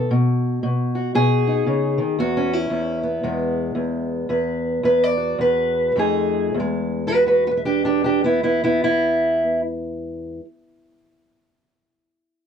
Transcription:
0.11 0.62 B2 medium
0.63 1.13 B2 medium
0.95 1.15 F#4 soft
1.15 1.66 B2 medium
1.15 2.18 G#4 loud
1.47 2.16 D#4 soft
1.67 1.98 C#3 medium
1.98 2.18 D#3 medium
2.19 2.70 E2 medium
2.19 2.53 F#4 medium
2.37 3.02 C#4 medium
2.53 4.11 E4 loud
2.70 3.22 E2 medium
3.03 5.17 B3 soft
3.23 3.74 E2 medium
3.23 4.27 G#3 medium
3.75 4.28 E2 medium
4.29 4.82 E2 medium
4.29 4.83 B4 soft
4.83 5.37 E2 medium
4.83 5.04 B4 medium
5.04 5.40 D5 medium
5.17 5.93 F#4 soft
5.38 5.95 E2 medium
5.38 5.97 B4 loud
5.96 6.51 F2 medium
5.96 6.52 F3 soft
5.96 6.52 A3 soft
5.96 6.53 D#4 soft
5.96 6.56 G#4 medium
6.54 10.39 E2 medium
6.60 10.45 G#3 medium
7.07 7.25 F#4 medium
7.07 7.27 B4 medium
7.27 7.46 F#4 medium
7.27 7.46 B4 medium
7.47 7.51 F#4 medium
7.47 7.50 B4 medium
7.51 7.65 B4 medium
7.57 7.65 E5 medium
7.65 7.84 D4 medium
7.65 7.85 G4 medium
7.85 8.03 D4 medium
7.85 8.04 G4 medium
8.04 8.24 D4 medium
8.04 8.25 G4 medium
8.24 8.42 B3 medium
8.24 8.42 E4 medium
8.43 8.62 B3 medium
8.43 8.63 E4 medium
8.64 9.41 B3 medium
8.64 8.83 E4 medium
8.84 9.60 E4 loud

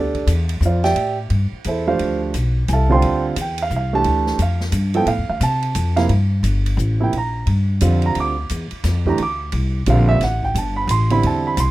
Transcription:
0.00 0.26 D2 medium
0.00 0.28 D4 medium
0.00 0.28 G4 medium
0.00 0.28 A4 medium
0.00 0.28 D5 medium
0.15 kick medium
0.15 ride soft
0.27 0.60 E2 medium
0.27 hi-hat pedal medium
0.27 ride medium
0.49 ride medium
0.61 0.94 F2 loud
0.61 hi-hat pedal medium
0.65 0.85 F4 medium
0.65 0.85 C5 medium
0.65 0.82 D5 medium
0.65 0.85 F5 medium
0.84 1.16 G4 medium
0.84 1.16 D5 medium
0.84 1.16 E5 medium
0.84 1.16 G5 loud
0.84 snare soft
0.84 ride soft
0.95 1.29 A2 medium
0.95 ride medium
1.30 1.51 G2 medium
1.30 ride medium
1.52 muted upright bass stroke soft
1.64 1.98 E2 medium
1.64 1.87 E4 medium
1.64 1.88 A4 medium
1.64 1.87 C5 medium
1.64 1.88 E5 medium
1.64 hi-hat pedal medium
1.64 ride medium
1.87 2.32 F3 medium
1.87 2.32 A3 medium
1.87 2.32 D4 medium
1.87 2.19 F4 medium
1.87 2.32 G4 medium
1.87 2.20 C5 medium
1.87 2.19 D5 medium
1.87 2.19 F5 medium
1.99 2.33 D2 medium
1.99 ride medium
2.34 2.67 B1 medium
2.34 hi-hat pedal soft
2.34 ride medium
2.68 3.01 C2 loud
2.68 2.71 G#5 medium
2.68 hi-hat pedal medium
2.68 ride medium
2.73 2.92 A4 medium
2.73 2.92 E5 medium
2.73 2.92 F5 medium
2.73 2.91 A5 medium
2.89 3.34 D3 medium
2.89 3.34 G3 medium
2.89 3.34 C4 medium
2.89 3.35 F4 medium
2.89 3.23 C5 medium
2.89 3.23 C6 loud
2.94 3.24 G5 medium
2.94 3.24 A5 medium
3.02 3.36 D2 medium
3.02 ride medium
3.36 3.70 E2 medium
3.36 hi-hat pedal medium
3.36 ride medium
3.41 3.60 G5 medium
3.58 ride medium
3.62 3.73 F5 loud
3.70 4.04 C2 medium
3.70 hi-hat pedal medium
3.76 3.95 F5 medium
3.93 4.37 E3 medium
3.93 4.37 A3 medium
3.93 4.37 D4 medium
3.93 4.38 G4 medium
3.93 4.38 A5 loud
4.04 4.38 D2 medium
4.04 ride medium
4.27 snare soft
4.39 4.71 F2 medium
4.39 4.62 F5 medium
4.39 hi-hat pedal soft
4.39 ride medium
4.60 snare soft
4.72 5.06 G2 loud
4.72 hi-hat pedal medium
4.72 ride medium
4.94 5.06 F3 medium
4.94 5.07 B3 medium
4.94 5.07 E4 medium
4.94 5.07 A4 medium
4.94 5.08 G5 loud
4.94 ride soft
5.06 5.20 A2 medium
5.06 5.28 F5 medium
5.06 ride medium
5.18 5.29 F2 medium
5.29 5.40 D2 medium
5.29 5.42 F5 medium
5.41 5.74 C3 loud
5.41 5.95 A5 loud
5.41 hi-hat pedal medium
5.41 ride medium
5.62 ride medium
5.75 6.08 F2 loud
5.75 hi-hat pedal medium
5.75 ride medium
5.96 6.09 C3 medium
5.96 6.09 F3 medium
5.96 6.09 A#3 medium
5.96 6.09 E4 medium
5.96 6.05 F5 loud
5.96 snare soft
5.96 ride medium
6.09 6.42 G2 medium
6.09 ride medium
6.43 6.76 G1 medium
6.43 hi-hat pedal medium
6.43 ride medium
6.66 ride medium
6.77 7.11 A1 loud
6.77 hi-hat pedal medium
7.00 7.12 C3 medium
7.00 7.12 F3 medium
7.00 7.12 A#3 medium
7.00 7.12 E4 medium
7.00 7.14 G5 medium
7.12 7.46 A#1 medium
7.12 ride medium
7.18 7.47 A#5 medium
7.47 7.80 G2 medium
7.47 ride medium
7.81 8.15 F2 loud
7.81 8.33 D3 medium
7.81 8.33 G3 medium
7.81 8.33 C4 medium
7.81 8.33 F4 medium
7.81 hi-hat pedal medium
7.81 ride medium
8.02 ride soft
8.06 8.17 A#5 loud
8.15 8.49 D2 medium
8.15 ride medium
8.20 8.50 D6 loud
8.49 8.70 E2 medium
8.49 hi-hat pedal medium
8.49 ride medium
8.71 muted upright bass stroke soft
8.71 ride soft
8.84 9.17 F2 loud
8.84 snare soft
8.84 hi-hat pedal medium
8.84 ride medium
9.06 9.18 E3 medium
9.06 9.18 A3 medium
9.06 9.18 D4 medium
9.06 9.18 G4 medium
9.06 9.20 A#5 medium
9.06 kick medium
9.18 9.52 D2 medium
9.18 ride medium
9.23 9.53 D6 loud
9.52 9.86 C2 medium
9.52 ride medium
9.86 10.20 A#1 loud
9.86 10.22 D3 medium
9.86 10.22 G3 medium
9.86 10.22 C4 medium
9.86 10.22 F4 medium
9.86 10.10 F5 medium
9.86 hi-hat pedal medium
9.86 ride medium
10.09 10.21 E5 loud
10.21 10.54 A1 medium
10.21 10.44 F#5 medium
10.21 snare soft
10.21 ride medium
10.43 10.56 G5 medium
10.43 kick medium
10.54 10.87 G1 medium
10.54 10.78 A5 medium
10.54 hi-hat pedal medium
10.54 ride medium
10.76 10.89 B5 loud
10.87 11.22 A1 loud
10.87 11.11 C6 loud
10.87 hi-hat pedal medium
10.87 ride medium
11.10 11.56 D3 medium
11.10 11.56 G3 medium
11.10 11.56 C4 medium
11.10 11.56 E4 medium
11.10 11.24 B5 loud
11.10 ride medium
11.23 11.56 E2 medium
11.23 11.47 A5 medium
11.23 ride medium
11.47 11.59 B5 loud
11.57 11.71 C2 loud
11.57 11.71 C6 medium
11.57 hi-hat pedal medium
11.57 ride medium

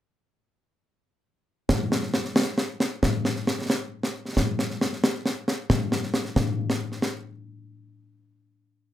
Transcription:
1.69 concert bass drum medium
1.69 snare loud
1.92 snare medium
2.03 snare soft
2.14 snare medium
2.25 snare soft
2.36 snare loud
2.58 snare medium
2.80 snare medium
3.03 concert bass drum medium
3.03 snare medium
3.25 snare medium
3.36 snare soft
3.47 snare medium
3.59 snare soft
3.70 snare medium
4.03 snare medium
4.25 snare soft
4.37 concert bass drum soft
4.37 snare medium
4.59 snare medium
4.70 snare soft
4.81 snare medium
4.93 snare soft
5.04 snare medium
5.26 snare medium
5.48 snare medium
5.70 concert bass drum medium
5.70 snare medium
5.92 snare medium
6.03 snare soft
6.14 snare medium
6.25 snare soft
6.36 concert bass drum medium
6.36 snare medium
6.70 snare medium
6.92 snare soft
7.02 snare medium

